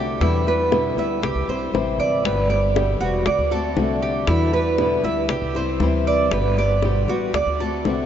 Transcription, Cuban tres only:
Already playing: G4
0.22 E4
0.48 B4
0.99 E5
1.24 G4
1.49 C5
2.00 D5
2.25 B4
2.50 D5
3.01 F#4
3.27 D5
3.52 A4
4.02 G4
4.28 E4
4.53 B4
5.04 E5
5.30 G4
5.56 C5
6.07 D5
6.33 B4
6.58 D5
7.09 F#4
7.34 D5
7.60 A4

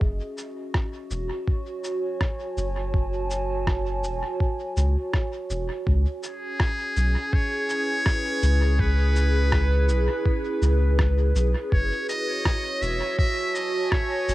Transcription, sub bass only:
0.01 F#1
1.11 E1
2.57 F#1
4.03 E1
4.77 C#2
5.50 E1
5.87 C#2
6.97 B1
8.43 C#2
9.89 B1
10.62 C#2
11.35 B1
11.72 F#1
12.82 E1
14.28 F#1

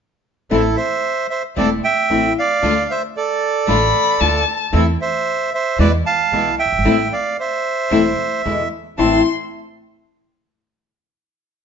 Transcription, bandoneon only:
0.51 E4 A4
0.76 C5 E5
1.30 C5 E5
1.57 A4 D5
1.84 E5 G5
2.38 D5 F5
2.91 C5 E5
3.17 A4 D5
4.74 E4 A4
5.01 C5 E5
5.54 C5 E5
5.80 B4 D5
6.06 F5 A5
6.59 E5 G5
7.13 D5 F5
7.40 C5 E5
8.98 A5

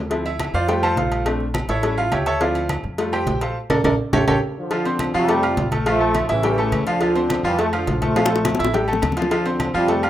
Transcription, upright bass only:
Already playing: D2
0.54 F2
0.96 A#1
1.68 A1
2.11 D2
2.83 F2
3.27 A#1
3.70 A#1
3.84 A#1
4.13 A1
4.27 A1
5.14 F2
5.57 A#1
6.29 A1
6.72 D2
7.43 F2
7.87 A#1
8.59 A1
9.02 D2
9.74 F2

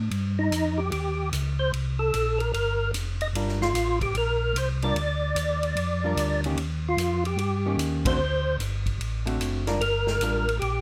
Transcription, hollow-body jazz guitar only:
3.35 G3 D4 F4 A#4
4.83 G3 D4 F4 A#4
6.04 G3 D4 F4 A#4
6.45 D#3 A#3 C#4 G4
7.66 D#3 A#3 C#4 G4
8.05 D3 A3 C4 F#4
9.25 D3 A3 C4 F#4
9.67 G3 D4 F4 A#4
10.22 G3 D4 F4 A#4

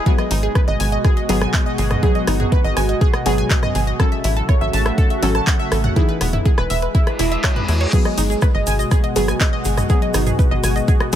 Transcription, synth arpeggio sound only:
0.06 G#4
0.18 D#5
0.31 D#4
0.43 G#4
0.55 B4
0.68 D#5
0.80 G#5
0.92 D#5
1.05 G#4
1.17 D#5
1.29 G#4
1.41 G#5
1.54 D#5
1.66 D#5
1.78 G#4
1.91 D#5
2.03 G#4
2.15 D#5
2.28 D#4
2.40 G#4
2.52 B4
2.64 D#5
2.77 G#5
2.89 D#5
3.01 G#4
3.14 D#5
3.26 G#4
3.38 G#5
3.50 D#5
3.63 D#5
3.75 G#4
3.87 D#5
4.00 A4
4.12 E5
4.24 E4
4.37 A4
4.49 C#5
4.61 E5
4.73 A5
4.86 E5
4.98 A4
5.10 E5
5.23 A4
5.35 A5
5.47 F#5
5.59 E5
5.72 A4
5.84 F#5
5.96 E4
6.09 B4
6.21 B3
6.33 E4
6.46 G#4
6.58 B4
6.70 E5
6.82 B4
6.95 E4
7.07 B4
7.19 E4
7.32 E5
7.44 C#5
7.56 B4
7.69 E4
7.81 C#5
7.93 G#4
8.05 D#5
8.18 D#4
8.30 G#4
8.42 B4
8.55 D#5
8.67 G#5
8.79 D#5
8.91 G#4
9.04 D#5
9.16 G#4
9.28 G#5
9.41 D#5
9.53 D#5
9.65 G#4
9.77 D#5
9.90 G#4
10.02 D#5
10.14 D#4
10.27 G#4
10.39 B4
10.51 D#5
10.64 G#5
10.76 D#5
10.88 G#4
11.00 D#5

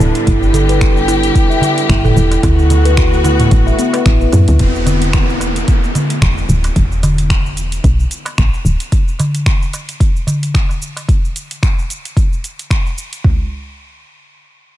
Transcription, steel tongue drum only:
0.00 E4
0.27 E4
0.54 A4
0.69 B4
0.81 G4
1.08 E4
1.50 E5
1.89 E4
2.04 A4
2.16 E4
2.43 E4
2.70 A4
2.85 B4
2.97 F#4
3.24 E4
3.67 E5
3.79 B3
3.94 B4
4.06 E4
4.21 B4
4.33 E4

